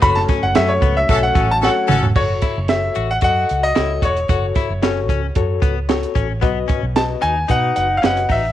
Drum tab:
CC |----------------|x---------------|----------------|----------------|
HH |x-x-x-x-x-x-----|--x-x-x-x-x-x-xx|x-x-x-x-x-x-xxx-|x-x-x-x-x-x-xxo-|
SD |-oo-o-------o---|--o-o-------o---|--o-o-------o---|----o-------o---|
T2 |--------------o-|----------------|----------------|----------------|
FT |---------------o|----------------|----------------|----------------|
BD |o-o---o-o-o-----|o-o-----o-----o-|o-o---o-o-o---o-|o-o-----o-----o-|